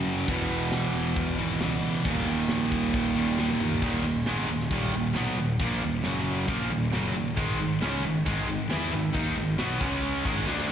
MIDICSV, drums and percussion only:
0, 0, Header, 1, 2, 480
1, 0, Start_track
1, 0, Tempo, 443131
1, 312, Time_signature, 4, 2, 24, 8
1, 11611, End_track
2, 0, Start_track
2, 0, Title_t, "Drums"
2, 66, Note_on_c, 9, 46, 67
2, 174, Note_off_c, 9, 46, 0
2, 186, Note_on_c, 9, 38, 31
2, 294, Note_off_c, 9, 38, 0
2, 299, Note_on_c, 9, 46, 89
2, 305, Note_on_c, 9, 36, 121
2, 407, Note_off_c, 9, 46, 0
2, 414, Note_off_c, 9, 36, 0
2, 543, Note_on_c, 9, 46, 69
2, 652, Note_off_c, 9, 46, 0
2, 778, Note_on_c, 9, 38, 124
2, 778, Note_on_c, 9, 46, 94
2, 886, Note_off_c, 9, 38, 0
2, 886, Note_off_c, 9, 46, 0
2, 1019, Note_on_c, 9, 46, 70
2, 1128, Note_off_c, 9, 46, 0
2, 1257, Note_on_c, 9, 46, 102
2, 1260, Note_on_c, 9, 36, 127
2, 1365, Note_off_c, 9, 46, 0
2, 1369, Note_off_c, 9, 36, 0
2, 1498, Note_on_c, 9, 46, 72
2, 1606, Note_off_c, 9, 46, 0
2, 1740, Note_on_c, 9, 38, 116
2, 1740, Note_on_c, 9, 46, 91
2, 1848, Note_off_c, 9, 38, 0
2, 1848, Note_off_c, 9, 46, 0
2, 1978, Note_on_c, 9, 46, 70
2, 2087, Note_off_c, 9, 46, 0
2, 2098, Note_on_c, 9, 38, 33
2, 2207, Note_off_c, 9, 38, 0
2, 2217, Note_on_c, 9, 46, 94
2, 2222, Note_on_c, 9, 36, 118
2, 2325, Note_off_c, 9, 46, 0
2, 2330, Note_off_c, 9, 36, 0
2, 2466, Note_on_c, 9, 46, 68
2, 2574, Note_off_c, 9, 46, 0
2, 2696, Note_on_c, 9, 38, 122
2, 2696, Note_on_c, 9, 46, 88
2, 2805, Note_off_c, 9, 38, 0
2, 2805, Note_off_c, 9, 46, 0
2, 2943, Note_on_c, 9, 36, 85
2, 2944, Note_on_c, 9, 46, 67
2, 3051, Note_off_c, 9, 36, 0
2, 3053, Note_off_c, 9, 46, 0
2, 3183, Note_on_c, 9, 46, 88
2, 3184, Note_on_c, 9, 36, 126
2, 3292, Note_off_c, 9, 36, 0
2, 3292, Note_off_c, 9, 46, 0
2, 3425, Note_on_c, 9, 46, 63
2, 3534, Note_off_c, 9, 46, 0
2, 3670, Note_on_c, 9, 38, 72
2, 3778, Note_off_c, 9, 38, 0
2, 3786, Note_on_c, 9, 48, 75
2, 3894, Note_off_c, 9, 48, 0
2, 3905, Note_on_c, 9, 45, 104
2, 4013, Note_off_c, 9, 45, 0
2, 4018, Note_on_c, 9, 43, 94
2, 4126, Note_off_c, 9, 43, 0
2, 4133, Note_on_c, 9, 49, 119
2, 4140, Note_on_c, 9, 36, 108
2, 4241, Note_off_c, 9, 49, 0
2, 4248, Note_off_c, 9, 36, 0
2, 4618, Note_on_c, 9, 38, 114
2, 4618, Note_on_c, 9, 46, 70
2, 4726, Note_off_c, 9, 38, 0
2, 4726, Note_off_c, 9, 46, 0
2, 4983, Note_on_c, 9, 38, 33
2, 5091, Note_off_c, 9, 38, 0
2, 5099, Note_on_c, 9, 46, 72
2, 5100, Note_on_c, 9, 36, 119
2, 5207, Note_off_c, 9, 46, 0
2, 5208, Note_off_c, 9, 36, 0
2, 5579, Note_on_c, 9, 38, 111
2, 5579, Note_on_c, 9, 46, 68
2, 5687, Note_off_c, 9, 38, 0
2, 5687, Note_off_c, 9, 46, 0
2, 6062, Note_on_c, 9, 36, 111
2, 6066, Note_on_c, 9, 46, 65
2, 6170, Note_off_c, 9, 36, 0
2, 6174, Note_off_c, 9, 46, 0
2, 6539, Note_on_c, 9, 38, 114
2, 6539, Note_on_c, 9, 46, 65
2, 6648, Note_off_c, 9, 38, 0
2, 6648, Note_off_c, 9, 46, 0
2, 7023, Note_on_c, 9, 36, 122
2, 7025, Note_on_c, 9, 46, 67
2, 7131, Note_off_c, 9, 36, 0
2, 7133, Note_off_c, 9, 46, 0
2, 7510, Note_on_c, 9, 38, 114
2, 7510, Note_on_c, 9, 46, 62
2, 7618, Note_off_c, 9, 38, 0
2, 7618, Note_off_c, 9, 46, 0
2, 7986, Note_on_c, 9, 36, 108
2, 7989, Note_on_c, 9, 46, 67
2, 8094, Note_off_c, 9, 36, 0
2, 8097, Note_off_c, 9, 46, 0
2, 8472, Note_on_c, 9, 38, 114
2, 8472, Note_on_c, 9, 46, 62
2, 8580, Note_off_c, 9, 38, 0
2, 8580, Note_off_c, 9, 46, 0
2, 8950, Note_on_c, 9, 36, 118
2, 8954, Note_on_c, 9, 46, 72
2, 9058, Note_off_c, 9, 36, 0
2, 9063, Note_off_c, 9, 46, 0
2, 9432, Note_on_c, 9, 38, 114
2, 9432, Note_on_c, 9, 46, 67
2, 9541, Note_off_c, 9, 38, 0
2, 9541, Note_off_c, 9, 46, 0
2, 9908, Note_on_c, 9, 36, 106
2, 9913, Note_on_c, 9, 46, 68
2, 10016, Note_off_c, 9, 36, 0
2, 10021, Note_off_c, 9, 46, 0
2, 10385, Note_on_c, 9, 38, 115
2, 10385, Note_on_c, 9, 46, 63
2, 10493, Note_off_c, 9, 38, 0
2, 10493, Note_off_c, 9, 46, 0
2, 10625, Note_on_c, 9, 36, 108
2, 10733, Note_off_c, 9, 36, 0
2, 10863, Note_on_c, 9, 46, 66
2, 10972, Note_off_c, 9, 46, 0
2, 11106, Note_on_c, 9, 36, 107
2, 11214, Note_off_c, 9, 36, 0
2, 11339, Note_on_c, 9, 38, 71
2, 11448, Note_off_c, 9, 38, 0
2, 11463, Note_on_c, 9, 38, 68
2, 11572, Note_off_c, 9, 38, 0
2, 11611, End_track
0, 0, End_of_file